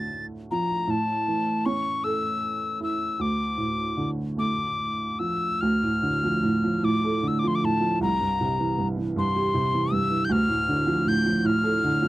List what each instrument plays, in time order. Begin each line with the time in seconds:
Already playing: upright piano D2 A2 D3 A3, tin whistle A6
0.51 upright piano F3, tin whistle A#5
0.87 upright piano A2, tin whistle A5
1.28 upright piano E3
1.66 upright piano C#4, tin whistle C#6
2.04 upright piano A4, tin whistle E6
2.80 upright piano E4, tin whistle E6
3.19 upright piano D2, tin whistle D6
3.58 upright piano A2
3.97 upright piano D3
4.37 upright piano A3, tin whistle D6
5.19 upright piano F3, tin whistle E6
5.61 upright piano D2, tin whistle F6
5.83 upright piano A2
6.03 upright piano D3
6.23 upright piano F3
6.43 upright piano A2
6.64 upright piano F3
6.83 upright piano A2, tin whistle D6
7.04 upright piano A4
7.23 upright piano D3
7.28 tin whistle E6
7.39 tin whistle D6
7.43 upright piano F3
7.48 tin whistle C6
7.55 tin whistle D6
7.63 upright piano A2, tin whistle A5
7.80 upright piano F3
8.01 upright piano C2, tin whistle A#5
8.21 upright piano G2
8.41 upright piano C3
8.60 upright piano E3
8.78 upright piano G2
8.97 upright piano E3
9.16 upright piano G2, tin whistle C6
9.36 upright piano G4
9.54 upright piano C3
9.74 upright piano E3
9.92 upright piano G2, tin whistle E6
10.10 upright piano E3
10.25 tin whistle G6
10.29 upright piano D2, tin whistle F6
10.49 upright piano A2
10.69 upright piano D3
10.87 upright piano F3
11.06 upright piano A2, tin whistle G6
11.26 upright piano F3
11.39 tin whistle G6
11.44 upright piano A2, tin whistle F6
11.63 upright piano A4
11.84 upright piano D3
12.02 upright piano F3